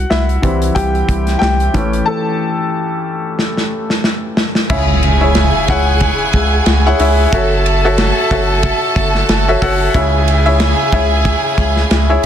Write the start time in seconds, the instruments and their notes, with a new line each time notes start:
Already playing: upright piano F#4 F#5
0.10 sub bass C2, upright piano E4 E5, snare
0.29 closed hi-hat
0.42 sub bass C2, upright piano E3 G3 C4, kick, closed hi-hat
0.62 closed hi-hat
0.75 sub bass C2, upright piano G4 G5, kick, closed hi-hat
0.95 closed hi-hat
1.09 sub bass C2, kick, closed hi-hat
1.27 snare, closed hi-hat
1.39 sub bass C2, upright piano G4 G5, snare
1.60 closed hi-hat
1.74 sub bass A1, upright piano E3 A3 C#4, kick, closed hi-hat
1.93 closed hi-hat
2.06 upright piano A4 A5
3.39 snare
3.57 snare
3.90 snare
4.04 snare
4.37 snare
4.55 snare
4.70 sub bass C#2, upright piano C#3 E4 G#4 C#5 E5, violin section G#4 G#5, kick, crash, impact
5.03 ride
5.21 upright piano E4 G#4 C#5 E5
5.35 snare, ride
5.68 sub bass C#2, upright piano E4 G#4 C#5 F#5, kick, ride
6.00 kick, ride
6.33 sub bass C#2, kick, ride
6.66 sub bass C#2, snare, ride
6.86 upright piano E4 G#4 C#5 F#5
7.00 sub bass C#2, upright piano E4 G#4 C#5 E5, open hi-hat, ride
7.32 sub bass F#1, upright piano F#4 A4 C#5 E5, violin section A4 A5, kick, hi-hat pedal, ride
7.66 ride
7.85 upright piano F#4 A4 C#5 E5
7.98 snare, ride
8.31 sub bass F#1, upright piano F#4 A4 C#5 E5, kick, ride
8.63 kick, ride
8.96 sub bass F#1, kick, ride
9.15 snare
9.29 sub bass F#1, snare, ride
9.48 upright piano F#4 A4 C#5 E5
9.62 sub bass F#1, upright piano F#4 A4 C#5 F#5, kick, open hi-hat, ride
9.94 sub bass C#2, upright piano C#3 E4 G#4 C#5 E5, violin section G#4 G#5, kick, hi-hat pedal, ride
10.28 ride
10.46 upright piano E4 G#4 C#5 E5
10.60 snare, ride
10.92 sub bass C#2, upright piano E4 G#4 C#5 E5, kick, ride
11.25 kick, ride
11.58 sub bass C#2, kick, ride
11.77 snare
11.91 sub bass C#2, snare, ride
12.10 upright piano E4 G#4 C#5 E5